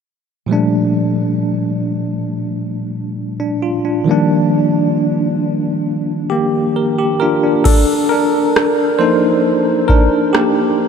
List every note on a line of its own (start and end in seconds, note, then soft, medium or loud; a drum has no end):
0.46 4.02 A#2 medium
0.46 4.03 F3 medium
0.46 4.04 G3 medium
0.51 4.04 A3 medium
0.51 3.15 D4 medium
3.40 3.61 D4 medium
3.62 3.84 F4 medium
3.85 4.10 D4 medium
4.04 7.15 D#3 medium
4.04 7.16 F3 medium
4.04 7.17 G3 medium
4.09 6.31 A#3 medium
4.09 6.74 D4 medium
6.30 7.17 A#3 medium
6.30 6.97 G4 medium
6.76 6.97 A#4 medium
6.99 7.20 G4 medium
7.20 7.42 D4 medium
7.20 7.42 F4 medium
7.20 7.62 A#4 medium
7.43 7.65 D4 medium
7.64 7.86 D4 medium
7.64 7.85 A4 medium
7.64 kick loud
7.64 crash medium
8.09 8.97 D4 medium
8.09 9.02 A#4 medium
8.56 cross-stick loud
8.99 10.88 F3 soft
8.99 10.34 A#3 medium
8.99 9.86 D#4 medium
8.99 10.88 A4 soft
8.99 9.85 C5 medium
9.88 10.31 D4 medium
9.88 10.35 A#4 medium
9.88 kick medium
10.33 10.88 A#3 medium
10.33 10.88 G4 medium
10.33 cross-stick medium